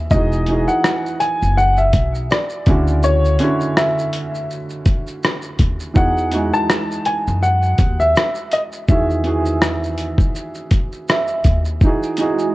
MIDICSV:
0, 0, Header, 1, 6, 480
1, 0, Start_track
1, 0, Key_signature, 4, "major"
1, 0, Tempo, 731707
1, 71, Time_signature, 4, 2, 24, 8
1, 8231, End_track
2, 0, Start_track
2, 0, Title_t, "Upright piano"
2, 0, Program_c, 0, 0
2, 71, Note_on_c, 0, 75, 87
2, 420, Note_off_c, 0, 75, 0
2, 445, Note_on_c, 0, 78, 91
2, 766, Note_off_c, 0, 78, 0
2, 788, Note_on_c, 0, 80, 95
2, 1012, Note_off_c, 0, 80, 0
2, 1032, Note_on_c, 0, 78, 104
2, 1157, Note_off_c, 0, 78, 0
2, 1166, Note_on_c, 0, 76, 82
2, 1487, Note_off_c, 0, 76, 0
2, 1516, Note_on_c, 0, 74, 73
2, 1967, Note_off_c, 0, 74, 0
2, 1994, Note_on_c, 0, 73, 85
2, 2473, Note_on_c, 0, 76, 76
2, 2487, Note_off_c, 0, 73, 0
2, 2926, Note_off_c, 0, 76, 0
2, 3913, Note_on_c, 0, 78, 99
2, 4287, Note_on_c, 0, 81, 103
2, 4298, Note_off_c, 0, 78, 0
2, 4631, Note_on_c, 0, 80, 101
2, 4642, Note_off_c, 0, 81, 0
2, 4685, Note_off_c, 0, 80, 0
2, 4871, Note_on_c, 0, 78, 97
2, 5246, Note_on_c, 0, 76, 101
2, 5257, Note_off_c, 0, 78, 0
2, 5567, Note_off_c, 0, 76, 0
2, 5595, Note_on_c, 0, 75, 76
2, 5648, Note_off_c, 0, 75, 0
2, 5835, Note_on_c, 0, 76, 84
2, 7487, Note_off_c, 0, 76, 0
2, 8231, End_track
3, 0, Start_track
3, 0, Title_t, "Felt piano"
3, 0, Program_c, 1, 0
3, 0, Control_c, 1, 64, 127
3, 0, Note_on_c, 1, 76, 66
3, 80, Control_c, 1, 64, 0
3, 81, Note_off_c, 1, 76, 0
3, 82, Note_on_c, 1, 52, 66
3, 91, Note_on_c, 1, 63, 64
3, 99, Note_on_c, 1, 66, 64
3, 110, Note_on_c, 1, 68, 69
3, 211, Control_c, 1, 64, 127
3, 283, Note_off_c, 1, 52, 0
3, 288, Note_off_c, 1, 63, 0
3, 292, Note_off_c, 1, 66, 0
3, 297, Note_off_c, 1, 68, 0
3, 312, Note_on_c, 1, 52, 78
3, 322, Note_on_c, 1, 63, 58
3, 330, Note_on_c, 1, 66, 59
3, 339, Note_on_c, 1, 68, 74
3, 1132, Note_off_c, 1, 52, 0
3, 1137, Note_off_c, 1, 63, 0
3, 1141, Note_off_c, 1, 66, 0
3, 1145, Note_off_c, 1, 68, 0
3, 1747, Note_on_c, 1, 50, 73
3, 1757, Note_on_c, 1, 49, 67
3, 1760, Control_c, 1, 64, 0
3, 1765, Note_on_c, 1, 64, 79
3, 1775, Note_on_c, 1, 66, 80
3, 1888, Control_c, 1, 64, 127
3, 2163, Note_off_c, 1, 50, 0
3, 2168, Note_off_c, 1, 49, 0
3, 2172, Note_off_c, 1, 64, 0
3, 2177, Note_off_c, 1, 66, 0
3, 2228, Note_on_c, 1, 50, 80
3, 2237, Note_on_c, 1, 61, 66
3, 2246, Note_on_c, 1, 64, 67
3, 2255, Note_on_c, 1, 66, 78
3, 3050, Note_off_c, 1, 50, 0
3, 3054, Note_off_c, 1, 61, 0
3, 3059, Note_off_c, 1, 64, 0
3, 3063, Note_off_c, 1, 66, 0
3, 3895, Note_on_c, 1, 52, 68
3, 3903, Note_on_c, 1, 63, 62
3, 3912, Note_on_c, 1, 66, 68
3, 3920, Control_c, 1, 64, 0
3, 3922, Note_on_c, 1, 68, 82
3, 4029, Control_c, 1, 64, 127
3, 4110, Note_off_c, 1, 52, 0
3, 4114, Note_off_c, 1, 63, 0
3, 4118, Note_off_c, 1, 66, 0
3, 4123, Note_off_c, 1, 68, 0
3, 4142, Note_on_c, 1, 52, 67
3, 4150, Note_on_c, 1, 63, 65
3, 4159, Note_on_c, 1, 66, 67
3, 4168, Note_on_c, 1, 56, 78
3, 4967, Note_off_c, 1, 52, 0
3, 4971, Note_off_c, 1, 63, 0
3, 4975, Note_off_c, 1, 66, 0
3, 4980, Note_off_c, 1, 56, 0
3, 5829, Note_on_c, 1, 52, 66
3, 5838, Note_on_c, 1, 51, 63
3, 5847, Note_on_c, 1, 66, 61
3, 5856, Note_on_c, 1, 68, 67
3, 6037, Note_off_c, 1, 52, 0
3, 6041, Note_off_c, 1, 51, 0
3, 6046, Note_off_c, 1, 66, 0
3, 6050, Note_off_c, 1, 68, 0
3, 6058, Note_on_c, 1, 52, 80
3, 6068, Note_on_c, 1, 51, 59
3, 6077, Note_on_c, 1, 66, 59
3, 6085, Note_on_c, 1, 68, 83
3, 6885, Note_off_c, 1, 52, 0
3, 6890, Note_off_c, 1, 51, 0
3, 6894, Note_off_c, 1, 66, 0
3, 6898, Note_off_c, 1, 68, 0
3, 7279, Note_on_c, 1, 76, 66
3, 7728, Note_off_c, 1, 76, 0
3, 7758, Control_c, 1, 64, 0
3, 7762, Note_on_c, 1, 52, 70
3, 7771, Note_on_c, 1, 63, 70
3, 7781, Note_on_c, 1, 66, 60
3, 7789, Note_on_c, 1, 68, 74
3, 7882, Control_c, 1, 64, 127
3, 7963, Note_off_c, 1, 52, 0
3, 7968, Note_off_c, 1, 63, 0
3, 7973, Note_off_c, 1, 66, 0
3, 7977, Note_off_c, 1, 68, 0
3, 7989, Note_on_c, 1, 52, 73
3, 7998, Note_on_c, 1, 63, 69
3, 8008, Note_on_c, 1, 66, 69
3, 8018, Note_on_c, 1, 68, 71
3, 8231, Note_off_c, 1, 52, 0
3, 8231, Note_off_c, 1, 63, 0
3, 8231, Note_off_c, 1, 66, 0
3, 8231, Note_off_c, 1, 68, 0
3, 8231, End_track
4, 0, Start_track
4, 0, Title_t, "Ambient pad"
4, 0, Program_c, 2, 92
4, 7749, Note_on_c, 2, 56, 73
4, 7750, Note_on_c, 2, 52, 78
4, 7751, Note_on_c, 2, 66, 84
4, 7753, Note_on_c, 2, 63, 66
4, 8231, Note_off_c, 2, 52, 0
4, 8231, Note_off_c, 2, 56, 0
4, 8231, Note_off_c, 2, 63, 0
4, 8231, Note_off_c, 2, 66, 0
4, 8231, End_track
5, 0, Start_track
5, 0, Title_t, "Upright bass"
5, 0, Program_c, 3, 32
5, 75, Note_on_c, 3, 28, 102
5, 426, Note_off_c, 3, 28, 0
5, 934, Note_on_c, 3, 30, 76
5, 1255, Note_off_c, 3, 30, 0
5, 1273, Note_on_c, 3, 35, 78
5, 1498, Note_off_c, 3, 35, 0
5, 1754, Note_on_c, 3, 38, 90
5, 2206, Note_off_c, 3, 38, 0
5, 3674, Note_on_c, 3, 39, 77
5, 3898, Note_off_c, 3, 39, 0
5, 3913, Note_on_c, 3, 40, 101
5, 4265, Note_off_c, 3, 40, 0
5, 4773, Note_on_c, 3, 42, 81
5, 5094, Note_off_c, 3, 42, 0
5, 5111, Note_on_c, 3, 39, 89
5, 5336, Note_off_c, 3, 39, 0
5, 5833, Note_on_c, 3, 40, 97
5, 6661, Note_off_c, 3, 40, 0
5, 7515, Note_on_c, 3, 39, 84
5, 7739, Note_off_c, 3, 39, 0
5, 8231, End_track
6, 0, Start_track
6, 0, Title_t, "Drums"
6, 69, Note_on_c, 9, 82, 74
6, 70, Note_on_c, 9, 36, 106
6, 134, Note_off_c, 9, 82, 0
6, 136, Note_off_c, 9, 36, 0
6, 211, Note_on_c, 9, 82, 43
6, 277, Note_off_c, 9, 82, 0
6, 304, Note_on_c, 9, 42, 64
6, 304, Note_on_c, 9, 82, 41
6, 370, Note_off_c, 9, 42, 0
6, 370, Note_off_c, 9, 82, 0
6, 447, Note_on_c, 9, 82, 44
6, 512, Note_off_c, 9, 82, 0
6, 552, Note_on_c, 9, 37, 103
6, 556, Note_on_c, 9, 82, 68
6, 618, Note_off_c, 9, 37, 0
6, 621, Note_off_c, 9, 82, 0
6, 696, Note_on_c, 9, 82, 48
6, 762, Note_off_c, 9, 82, 0
6, 790, Note_on_c, 9, 42, 66
6, 790, Note_on_c, 9, 82, 52
6, 856, Note_off_c, 9, 42, 0
6, 856, Note_off_c, 9, 82, 0
6, 933, Note_on_c, 9, 82, 43
6, 999, Note_off_c, 9, 82, 0
6, 1036, Note_on_c, 9, 82, 54
6, 1102, Note_off_c, 9, 82, 0
6, 1162, Note_on_c, 9, 82, 40
6, 1228, Note_off_c, 9, 82, 0
6, 1266, Note_on_c, 9, 42, 69
6, 1266, Note_on_c, 9, 82, 46
6, 1268, Note_on_c, 9, 36, 87
6, 1331, Note_off_c, 9, 42, 0
6, 1331, Note_off_c, 9, 82, 0
6, 1334, Note_off_c, 9, 36, 0
6, 1408, Note_on_c, 9, 82, 41
6, 1474, Note_off_c, 9, 82, 0
6, 1512, Note_on_c, 9, 82, 52
6, 1522, Note_on_c, 9, 37, 108
6, 1578, Note_off_c, 9, 82, 0
6, 1588, Note_off_c, 9, 37, 0
6, 1637, Note_on_c, 9, 82, 44
6, 1703, Note_off_c, 9, 82, 0
6, 1746, Note_on_c, 9, 42, 61
6, 1746, Note_on_c, 9, 82, 39
6, 1750, Note_on_c, 9, 36, 100
6, 1811, Note_off_c, 9, 42, 0
6, 1811, Note_off_c, 9, 82, 0
6, 1815, Note_off_c, 9, 36, 0
6, 1885, Note_on_c, 9, 82, 45
6, 1950, Note_off_c, 9, 82, 0
6, 1987, Note_on_c, 9, 82, 70
6, 2053, Note_off_c, 9, 82, 0
6, 2132, Note_on_c, 9, 82, 39
6, 2197, Note_off_c, 9, 82, 0
6, 2223, Note_on_c, 9, 42, 62
6, 2223, Note_on_c, 9, 82, 44
6, 2289, Note_off_c, 9, 42, 0
6, 2289, Note_off_c, 9, 82, 0
6, 2366, Note_on_c, 9, 82, 43
6, 2432, Note_off_c, 9, 82, 0
6, 2472, Note_on_c, 9, 37, 108
6, 2476, Note_on_c, 9, 82, 75
6, 2538, Note_off_c, 9, 37, 0
6, 2541, Note_off_c, 9, 82, 0
6, 2616, Note_on_c, 9, 82, 54
6, 2681, Note_off_c, 9, 82, 0
6, 2708, Note_on_c, 9, 42, 70
6, 2708, Note_on_c, 9, 82, 44
6, 2774, Note_off_c, 9, 42, 0
6, 2774, Note_off_c, 9, 82, 0
6, 2852, Note_on_c, 9, 82, 39
6, 2917, Note_off_c, 9, 82, 0
6, 2956, Note_on_c, 9, 82, 56
6, 3022, Note_off_c, 9, 82, 0
6, 3081, Note_on_c, 9, 82, 38
6, 3147, Note_off_c, 9, 82, 0
6, 3186, Note_on_c, 9, 42, 59
6, 3186, Note_on_c, 9, 82, 46
6, 3188, Note_on_c, 9, 36, 99
6, 3252, Note_off_c, 9, 42, 0
6, 3252, Note_off_c, 9, 82, 0
6, 3254, Note_off_c, 9, 36, 0
6, 3328, Note_on_c, 9, 82, 41
6, 3393, Note_off_c, 9, 82, 0
6, 3432, Note_on_c, 9, 82, 52
6, 3442, Note_on_c, 9, 37, 109
6, 3498, Note_off_c, 9, 82, 0
6, 3508, Note_off_c, 9, 37, 0
6, 3556, Note_on_c, 9, 82, 43
6, 3622, Note_off_c, 9, 82, 0
6, 3666, Note_on_c, 9, 42, 62
6, 3666, Note_on_c, 9, 82, 42
6, 3669, Note_on_c, 9, 36, 83
6, 3732, Note_off_c, 9, 42, 0
6, 3732, Note_off_c, 9, 82, 0
6, 3735, Note_off_c, 9, 36, 0
6, 3804, Note_on_c, 9, 82, 48
6, 3870, Note_off_c, 9, 82, 0
6, 3906, Note_on_c, 9, 82, 69
6, 3909, Note_on_c, 9, 36, 117
6, 3972, Note_off_c, 9, 82, 0
6, 3974, Note_off_c, 9, 36, 0
6, 4050, Note_on_c, 9, 82, 39
6, 4116, Note_off_c, 9, 82, 0
6, 4143, Note_on_c, 9, 42, 64
6, 4143, Note_on_c, 9, 82, 43
6, 4208, Note_off_c, 9, 42, 0
6, 4208, Note_off_c, 9, 82, 0
6, 4286, Note_on_c, 9, 82, 40
6, 4352, Note_off_c, 9, 82, 0
6, 4393, Note_on_c, 9, 37, 120
6, 4396, Note_on_c, 9, 82, 76
6, 4458, Note_off_c, 9, 37, 0
6, 4462, Note_off_c, 9, 82, 0
6, 4537, Note_on_c, 9, 82, 53
6, 4602, Note_off_c, 9, 82, 0
6, 4627, Note_on_c, 9, 42, 70
6, 4627, Note_on_c, 9, 82, 49
6, 4693, Note_off_c, 9, 42, 0
6, 4693, Note_off_c, 9, 82, 0
6, 4771, Note_on_c, 9, 82, 42
6, 4837, Note_off_c, 9, 82, 0
6, 4873, Note_on_c, 9, 82, 57
6, 4939, Note_off_c, 9, 82, 0
6, 5000, Note_on_c, 9, 82, 39
6, 5066, Note_off_c, 9, 82, 0
6, 5104, Note_on_c, 9, 42, 62
6, 5104, Note_on_c, 9, 82, 45
6, 5107, Note_on_c, 9, 36, 95
6, 5170, Note_off_c, 9, 42, 0
6, 5170, Note_off_c, 9, 82, 0
6, 5173, Note_off_c, 9, 36, 0
6, 5248, Note_on_c, 9, 82, 42
6, 5313, Note_off_c, 9, 82, 0
6, 5351, Note_on_c, 9, 82, 54
6, 5361, Note_on_c, 9, 37, 108
6, 5417, Note_off_c, 9, 82, 0
6, 5427, Note_off_c, 9, 37, 0
6, 5477, Note_on_c, 9, 82, 43
6, 5542, Note_off_c, 9, 82, 0
6, 5586, Note_on_c, 9, 42, 64
6, 5586, Note_on_c, 9, 82, 43
6, 5651, Note_off_c, 9, 42, 0
6, 5651, Note_off_c, 9, 82, 0
6, 5723, Note_on_c, 9, 82, 48
6, 5789, Note_off_c, 9, 82, 0
6, 5827, Note_on_c, 9, 82, 71
6, 5829, Note_on_c, 9, 36, 116
6, 5892, Note_off_c, 9, 82, 0
6, 5895, Note_off_c, 9, 36, 0
6, 5971, Note_on_c, 9, 82, 37
6, 6037, Note_off_c, 9, 82, 0
6, 6062, Note_on_c, 9, 42, 58
6, 6062, Note_on_c, 9, 82, 48
6, 6127, Note_off_c, 9, 42, 0
6, 6127, Note_off_c, 9, 82, 0
6, 6203, Note_on_c, 9, 82, 46
6, 6269, Note_off_c, 9, 82, 0
6, 6310, Note_on_c, 9, 37, 115
6, 6313, Note_on_c, 9, 82, 74
6, 6375, Note_off_c, 9, 37, 0
6, 6378, Note_off_c, 9, 82, 0
6, 6455, Note_on_c, 9, 82, 51
6, 6520, Note_off_c, 9, 82, 0
6, 6546, Note_on_c, 9, 42, 61
6, 6546, Note_on_c, 9, 82, 49
6, 6611, Note_off_c, 9, 42, 0
6, 6611, Note_off_c, 9, 82, 0
6, 6679, Note_on_c, 9, 36, 86
6, 6688, Note_on_c, 9, 82, 40
6, 6744, Note_off_c, 9, 36, 0
6, 6754, Note_off_c, 9, 82, 0
6, 6792, Note_on_c, 9, 82, 59
6, 6858, Note_off_c, 9, 82, 0
6, 6919, Note_on_c, 9, 82, 39
6, 6984, Note_off_c, 9, 82, 0
6, 7025, Note_on_c, 9, 42, 63
6, 7025, Note_on_c, 9, 82, 45
6, 7028, Note_on_c, 9, 36, 94
6, 7090, Note_off_c, 9, 42, 0
6, 7090, Note_off_c, 9, 82, 0
6, 7094, Note_off_c, 9, 36, 0
6, 7167, Note_on_c, 9, 82, 43
6, 7233, Note_off_c, 9, 82, 0
6, 7271, Note_on_c, 9, 82, 54
6, 7280, Note_on_c, 9, 37, 117
6, 7336, Note_off_c, 9, 82, 0
6, 7346, Note_off_c, 9, 37, 0
6, 7397, Note_on_c, 9, 82, 44
6, 7463, Note_off_c, 9, 82, 0
6, 7507, Note_on_c, 9, 42, 60
6, 7507, Note_on_c, 9, 82, 45
6, 7510, Note_on_c, 9, 36, 78
6, 7572, Note_off_c, 9, 42, 0
6, 7572, Note_off_c, 9, 82, 0
6, 7576, Note_off_c, 9, 36, 0
6, 7644, Note_on_c, 9, 82, 45
6, 7710, Note_off_c, 9, 82, 0
6, 7747, Note_on_c, 9, 82, 75
6, 7750, Note_on_c, 9, 36, 113
6, 7813, Note_off_c, 9, 82, 0
6, 7815, Note_off_c, 9, 36, 0
6, 7892, Note_on_c, 9, 82, 40
6, 7958, Note_off_c, 9, 82, 0
6, 7983, Note_on_c, 9, 42, 60
6, 7983, Note_on_c, 9, 82, 43
6, 8048, Note_off_c, 9, 42, 0
6, 8048, Note_off_c, 9, 82, 0
6, 8126, Note_on_c, 9, 82, 44
6, 8192, Note_off_c, 9, 82, 0
6, 8231, End_track
0, 0, End_of_file